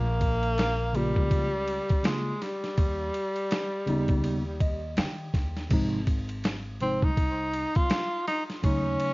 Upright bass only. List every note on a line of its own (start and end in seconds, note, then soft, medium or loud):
0.00 1.16 A#1 loud
1.16 1.77 C#2 medium
1.90 2.03 C#2 medium
2.78 3.08 D#2 loud
3.87 4.99 D#2 medium
4.97 5.28 D#3 loud
5.34 5.64 D#2 medium
5.71 6.98 G#1 loud
7.02 7.63 C2 medium
7.76 7.88 C2 medium
8.63 8.94 D#2 loud